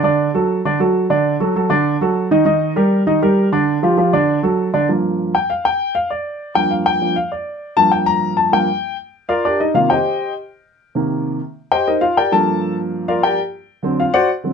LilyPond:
<<
  \new Staff \with { instrumentName = "Upright piano" } { \time 4/4 \key g \minor \tempo 4 = 198 <d d' d''>4 <fis fis' a'>4 <d d' d''>8 <fis fis' a'>4 <d d' d''>8~ | <d d' d''>8 <fis fis' a'>8 <fis fis' a'>8 <d d' d''>4 <fis fis' a'>4 <ees ees' ees''>8 | <ees ees' ees''>4 <g g' bes'>4 <ees ees' ees''>8 <g g' bes'>4 <d d' d''>8~ | <d d' d''>8 <f f' g'>8 <f f' g'>8 <d d' d''>4 <fis fis' a'>4 <d d' d''>8 |
r4. g''8 f''8 g''4 f''8 | d''4. g''8 f''8 g''4 f''8 | d''4. a''8 g''8 bes''4 a''8 | g''4. r4 <f' bes' d'' f''>8 <d' g' bes' d''>8 <ees' ees''>8 |
<f' f''>8 <g' c'' ees'' g''>4. r2 | r2 r8 <g' c'' ees'' g''>8 <ees' bes' c'' ees''>8 <f' f''>8 | <g' bes' d'' g''>8 <a' a''>4. r4 <f' bes' d'' f''>8 <g' bes' d'' g''>8 | r2 <f' f''>8 <fis' c'' d'' fis''>8 r4 | }
  \new Staff \with { instrumentName = "Upright piano" } { \clef bass \time 4/4 \key g \minor r1 | r1 | r1 | r1 |
<g, f bes>4. r2 r8 | r4. <g, f bes>4. <g, f bes>8 r8 | r4. <g, f bes>2~ <g, f bes>8 | <g, f bes>4. r2 r8 |
<c ees bes>8 r2. r8 | <c ees bes>4. r2 r8 | r8 <g, f bes>2.~ <g, f bes>8 | r4. <d fis c'>8 r4. <d fis c'>8 | }
>>